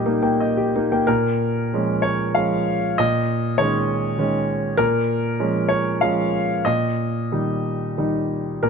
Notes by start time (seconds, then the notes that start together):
Already playing: A#2 G3 A#3 D#4 G4 D#5 G5
0.06 A#3 D#4
0.22 A#3 G5
0.40 D#5
0.57 G4
0.76 A#3 D#4
0.92 A#3 G5
1.07 A#2 A#4
1.73 F3 G#3 C#4
2.02 C#5
2.35 F3 G#3 C#4 F5
2.98 A#2 D#5
3.58 D#3 G#3 C#4 C#5
4.18 D#3 G#3 C#4
4.77 A#2 A#4
5.39 F3 G#3 C#4
5.69 C#5
6.01 F3 G#3 C#4 F5
6.65 A#2 D#5
7.32 D#3 G3 D#4
7.98 D#3 G3 D#4
8.63 A#2 A#4